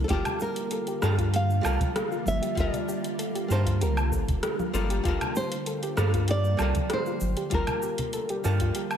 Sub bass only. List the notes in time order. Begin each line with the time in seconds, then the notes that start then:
0.10 G1
1.03 G2
1.65 C2
2.27 G1
2.57 G1
3.50 G2
3.82 C2
4.12 G1
4.28 F1
4.74 G1
5.05 G1
5.97 G2
6.60 C2
7.21 G1
7.52 G1
8.45 G2